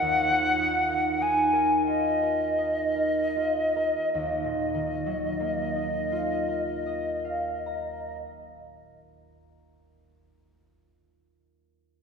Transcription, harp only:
Already playing: D#4 F4 F#4 A#4
0.02 D#2
0.30 F4
0.60 D#4
0.90 A#4
1.21 D#4
1.53 A#4
1.87 F4
2.22 A#4
2.58 D#4
2.96 A#4
3.36 F4
3.76 A#4
4.15 D#2
4.44 A#2
4.75 D#3
5.06 F#3
5.40 A#3
5.76 D#4
6.12 F4
6.48 A#4
6.86 D#5
7.25 F5
7.66 A#5

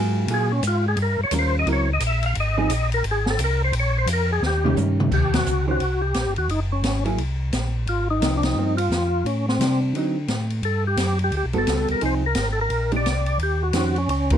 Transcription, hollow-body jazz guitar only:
Already playing: F#3 A#3 F4 G#4
0.30 F#3 A#3 F4 G#4
1.32 G3 C#4 F4 A#4
1.67 F#3 C4 E4 A#4
2.58 F3 C4 D#4 G#4
4.64 D#3 A#3 C#4 G4
5.67 D#3 C#4 G4 C5
7.05 F#3 A#3 E4 G#4
8.22 F3 A#3 C4
8.58 F3 A#3 C4
9.60 G3 C4 D4
9.95 D3 F#3 C4 D#4
11.53 G3 B3 F#4 A4
12.02 F3 C4 D#4 G#4
12.92 G#3 D4 G4
13.75 D#3 C#4 G4 C5
14.33 D#3 C#4 G4 C5

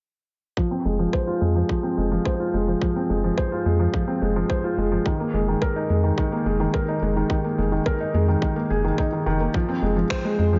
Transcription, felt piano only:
0.57 F3
0.71 C4
0.85 G#3
0.99 F3
1.13 C5
1.27 F4
1.41 G#3
1.55 F3
1.69 F3
1.83 C4
1.98 G#3
2.12 F3
2.25 C5
2.40 F4
2.54 G#3
2.68 F3
2.82 F3
2.96 C4
3.10 G#3
3.24 F3
3.38 C5
3.52 F4
3.66 G#3
3.80 F3
3.94 F3
4.08 C4
4.22 G#3
4.36 F3
4.50 C5
4.64 F4
4.78 G#3
4.92 F3
5.06 D#3
5.20 A#3
5.34 G#3
5.48 D#3
5.62 A#4
5.76 D#4
5.90 G#3
6.04 D#3
6.18 D#3
6.32 A#3
6.46 G#3
6.60 D#3
6.74 A#4
6.88 D#4
7.03 G#3
7.16 D#3
7.30 D#3
7.44 A#3
7.58 G#3
7.72 D#3
7.86 A#4
8.00 D#4
8.14 G#3
8.28 D#3
8.42 D#3
8.56 A#3
8.70 G#4
8.84 D#3
8.99 D#4
9.13 D#3
9.26 D#3
9.40 A#3
9.54 F3
9.69 C4
9.82 G#3
9.96 F3
10.10 C5
10.25 G#3
10.39 G#3
10.53 F3

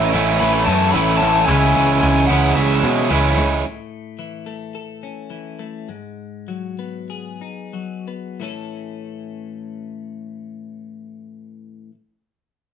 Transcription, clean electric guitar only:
Already playing: A2 E3 C#4
0.13 E3
0.42 A3
0.69 C#4
0.95 E3
1.22 C#4
1.50 C#3
1.77 E3
2.29 E3
2.57 G#3
3.10 E3
3.38 D#4
3.65 A2
4.19 E3
4.46 A3
4.75 A4
5.03 C#4
5.30 E3
5.59 A3
5.89 G#2
6.48 F#3
6.79 B3
7.10 G#4
7.41 D#4
7.73 F#3
8.08 B3
8.40 A2 E3 A3 C#4
8.44 A4

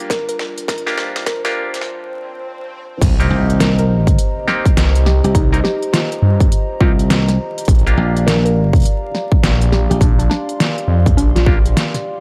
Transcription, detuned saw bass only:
3.01 C2
4.77 C2
5.35 C2
6.22 G2
7.68 A#1
9.43 A#1
10.01 A#1
10.88 F2
11.17 A#1
11.35 A#1

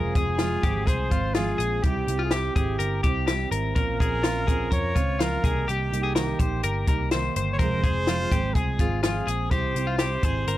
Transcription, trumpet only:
Already playing: G#4
0.87 C5
1.35 G#4
1.84 G4
2.25 G#4
2.34 G4
3.76 A#4
4.72 C#5
5.22 A#4
5.70 G4
6.16 G4
7.53 C#5
7.59 C5
8.54 G#4
9.03 G#4
9.50 C5
9.98 C5

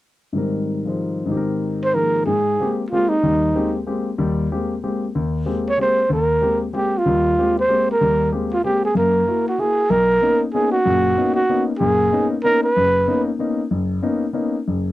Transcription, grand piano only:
0.33 G#2 D#3 G3 C4
0.38 A#4
0.85 F3 G#3 D#4 C5
1.26 G#2 D#3
1.31 C4 G4
1.37 A#4
1.94 D#3 F3 A#3 G#4
2.27 G#2
2.60 G#3 A#3 C4 G4
2.92 G#3 A#3 C4 G4
3.23 D#2 G3
3.55 G#3 A#3 C4 G4
3.87 G#3 A#3 C4 G4
4.18 D#2 G3
4.52 G#3 A#3 C4 G4
4.83 G#3 A#3 C4 G4
5.15 D#2
5.46 G#3 A#3 C4 G4
5.78 G#3 A#3 C4 G4
6.09 D#2
6.41 G#3 A#3 C4 G4
6.73 G#3 A#3 C4 G4
7.06 D#2 G3
7.38 G#3 A#3 C4 G4
7.68 G#3 A#3 C4 G4
8.01 D#2 G3
8.32 G#3 A#3 C4 G4
8.64 G#3 A#3 C4 G4
8.95 F#2 A#3
9.27 A#3 E4 F#4
9.58 A#3 E4 F#4
9.90 B1
10.22 A#3 B3 C#4 D#4
10.54 A#3 B3 C#4 D#4
10.85 F#1 A#2
11.17 A#3 B3 C#4 D#4
11.49 A#3 B3 C#4 D#4
11.80 F#1 A#2
12.13 A#3 B3 C#4 D#4
12.44 A#3 B3 C#4 D#4
12.77 F#1
13.08 A#3 B3 C#4 D#4
13.39 A#3 B3 C#4 D#4
13.71 F#1
14.02 A#3 B3 C#4 D#4
14.33 A#3 B3 C#4 D#4
14.68 F#1

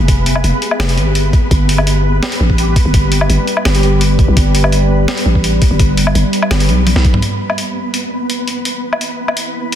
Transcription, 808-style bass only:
0.00 F1
0.44 F1
0.79 F1
0.98 G#1
1.07 G1
1.51 G1
2.40 A1
2.85 G1
3.29 G1
3.66 G1
4.28 B1
4.37 G1
5.26 A1
5.71 G1
6.15 G1
6.51 G1
6.69 B1
6.96 B1

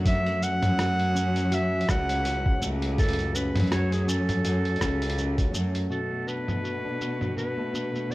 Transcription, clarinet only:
0.06 E5
0.43 F#5
1.54 E5
1.90 F#5
2.99 A4
3.35 B4
3.72 C#5
3.93 G#4
4.10 A4
5.91 A4
6.28 B4
7.37 B4
8.11 D5

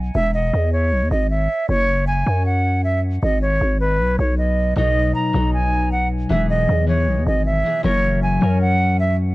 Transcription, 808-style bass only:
Already playing: B1
0.15 E1
0.53 E2
0.92 B1
1.02 E2
1.11 G#1
1.69 F#1
2.27 F#2
3.23 G#1
3.61 G#1
4.00 B1
4.19 B1
4.77 B1
5.34 B1
6.30 E1
6.69 E2
7.07 B1
7.18 E2
7.27 G#1
7.84 F#1
8.42 F#2

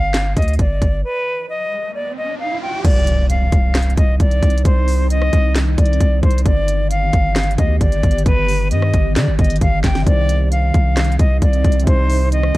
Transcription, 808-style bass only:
Already playing: G1
0.37 D2
0.59 G1
0.82 G1
2.85 C2
3.52 C2
3.98 C2
4.20 C2
4.43 C2
4.65 C2
5.33 C2
5.78 C2
6.00 C2
6.23 C2
6.46 G1
7.13 G1
7.58 D2
7.81 G1
8.03 G1
8.26 G1
8.71 G2
8.94 G1
9.16 D3
9.27 G1
9.39 G1
9.61 G1
9.84 G1
10.07 C2
10.74 C2
11.19 C2
11.42 C2
11.64 C2
11.87 C2

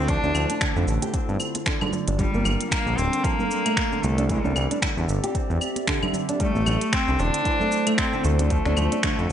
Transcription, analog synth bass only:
Already playing: D2
0.23 D2
0.35 D2
0.76 F2
0.87 A1
1.29 G2
2.08 G1
2.34 G1
2.45 G1
2.86 A#1
2.98 D1
4.03 C2
4.45 C2
4.56 C2
4.97 E2
5.08 G1
5.50 E2
6.55 A1
6.66 A1
7.08 C2
7.19 E1
8.25 D2
8.66 D2
8.77 D2
9.19 F2

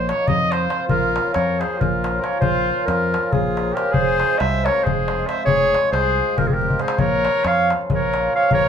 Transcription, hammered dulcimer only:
0.08 F#3 A#3 D#4 F#4
0.51 F3 A3 C4 F4
0.71 F3 A3 C4 F4
1.16 F3 A#3 C#4 F4
1.61 F3 A#3 C#4 F4
2.03 F3 A#3 C#4 F4
2.21 F3 A#3 C#4 F4
2.66 F3 A#3 C#4 F4
3.13 F3 A#3 C#4 F4
3.56 F3 A#3 C#4 F4
3.75 F3 A#3 C#4 F4
4.20 F3 G#3 C4 F4
4.65 F3 G#3 C4 F4
5.09 F3 G#3 C4 F4
5.28 F3 G#3 C4 F4
5.72 F3 G#3 C4 F4
6.18 F3 G#3 C4 F4
6.61 F3 G#3 C4 F4
6.80 F3 G#3 C4 F4
7.25 F3 A#3 C#4 F4
7.70 F3 A#3 C#4 F4
8.14 F3 A#3 C#4 F4
8.31 F3 A#3 C#4 F4

